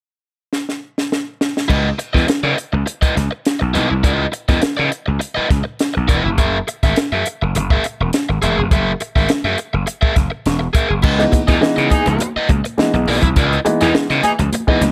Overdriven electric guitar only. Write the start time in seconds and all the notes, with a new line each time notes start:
1.68 E4 B4 D#5
1.98 muted overdriven electric guitar stroke
2.13 E4 B4 D#5
2.27 muted overdriven electric guitar stroke
2.43 E4 B4 D#5
2.57 muted overdriven electric guitar stroke
2.73 muted overdriven electric guitar stroke
2.86 muted overdriven electric guitar stroke
3.02 E4 B4 D#5
3.15 muted overdriven electric guitar stroke
3.31 muted overdriven electric guitar stroke
3.59 muted overdriven electric guitar stroke
3.74 E4 B4 D#5
3.90 muted overdriven electric guitar stroke
4.03 E4 B4 D#5
4.32 muted overdriven electric guitar stroke
4.48 E4 B4 D#5
4.62 muted overdriven electric guitar stroke
4.77 E4 B4 D#5
4.91 muted overdriven electric guitar stroke
5.06 muted overdriven electric guitar stroke
5.19 muted overdriven electric guitar stroke
5.35 E4 B4 D#5
5.48 muted overdriven electric guitar stroke
5.64 muted overdriven electric guitar stroke
5.94 muted overdriven electric guitar stroke
6.08 E4 B4 D#5
6.24 muted overdriven electric guitar stroke
6.38 G#4 A#4 E5
6.67 muted overdriven electric guitar stroke
6.83 G#4 A#4 E5
6.97 muted overdriven electric guitar stroke
7.12 G#4 A#4 E5
7.26 muted overdriven electric guitar stroke
7.42 muted overdriven electric guitar stroke
7.56 muted overdriven electric guitar stroke
7.71 G#4 A#4 E5
7.85 muted overdriven electric guitar stroke
8.01 muted overdriven electric guitar stroke
8.29 muted overdriven electric guitar stroke
8.42 G#4 A#4 E5
8.58 muted overdriven electric guitar stroke
8.72 G#4 A#4 E5
9.01 muted overdriven electric guitar stroke
9.16 G#4 A#4 E5
9.30 muted overdriven electric guitar stroke
9.45 G#4 A#4 E5
9.58 muted overdriven electric guitar stroke
9.73 muted overdriven electric guitar stroke
9.86 muted overdriven electric guitar stroke
10.01 G#4 A#4 E5
10.15 muted overdriven electric guitar stroke
10.30 muted overdriven electric guitar stroke
10.59 muted overdriven electric guitar stroke
10.73 G#4 A#4 E5
10.89 muted overdriven electric guitar stroke
11.03 E4 B4 D#5
11.32 muted overdriven electric guitar stroke
11.48 E4 B4 D#5
11.62 muted overdriven electric guitar stroke
11.76 E4 B4 D#5
11.92 muted overdriven electric guitar stroke
12.06 muted overdriven electric guitar stroke
12.21 muted overdriven electric guitar stroke
12.36 E4 B4 D#5
12.49 muted overdriven electric guitar stroke
12.64 muted overdriven electric guitar stroke
12.94 muted overdriven electric guitar stroke
13.08 E4 B4 D#5
13.23 muted overdriven electric guitar stroke
13.37 E4 B4 D#5
13.65 muted overdriven electric guitar stroke
13.81 E4 B4 D#5
13.94 muted overdriven electric guitar stroke
14.10 E4 B4 D#5
14.24 muted overdriven electric guitar stroke
14.39 muted overdriven electric guitar stroke
14.54 muted overdriven electric guitar stroke
14.69 E4 B4 D#5
14.83 muted overdriven electric guitar stroke